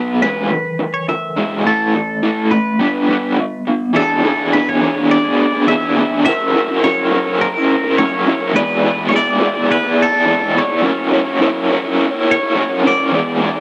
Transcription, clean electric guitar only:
0.00 0.19 B4 medium
0.22 0.96 B4 medium
0.94 1.08 C#5 medium
1.09 1.62 E5 loud
1.67 2.49 A4 medium
2.51 3.34 B4 medium
3.96 4.53 A4 medium
4.53 4.68 B4 medium
4.69 5.11 C#5 medium
5.11 5.68 D5 medium
5.68 6.22 E5 loud
6.25 6.84 E5 loud
6.84 7.43 C#5 medium
7.41 7.95 A#4 medium
7.98 8.56 C#5 medium
8.56 9.03 B4 medium
9.09 9.15 C#5 medium
9.16 9.68 D5 medium
9.72 10.01 B4 medium
10.02 10.60 A4 medium
10.59 12.30 C#5 loud
12.31 12.87 C#5 medium
12.87 13.60 D5 medium

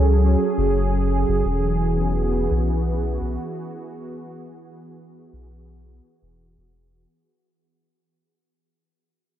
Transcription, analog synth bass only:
0.00 0.36 C#2 medium
0.58 1.25 F#1 medium
1.28 1.43 F#1 medium
1.45 2.47 E1 medium
2.51 3.18 B1 medium
3.21 3.38 B1 medium
5.33 6.00 B1 medium
6.22 6.57 E1 medium
6.57 7.06 E1 medium

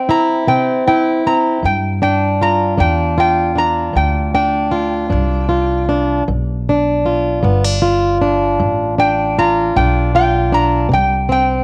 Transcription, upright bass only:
1.64 2.77 G2 medium
2.80 3.92 E2 medium
3.96 5.08 D2 medium
5.12 6.25 C2 medium
6.28 7.40 B1 medium
7.44 8.56 G1 medium
8.60 9.72 A1 medium
9.76 10.88 B1 medium
10.92 11.64 C2 medium

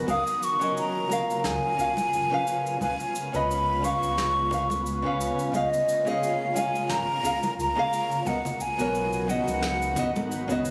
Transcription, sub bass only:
0.08 0.22 F#1 loud
1.45 1.58 C#2 medium
2.13 2.26 F#1 medium
3.34 3.93 C#2 loud
4.02 5.30 C#2 medium
5.54 5.67 C#2 loud
6.90 7.03 G#1 medium
7.58 7.72 C#2 medium
8.79 9.39 B1 loud
9.48 9.96 C#2 medium
9.97 10.71 G#1 medium

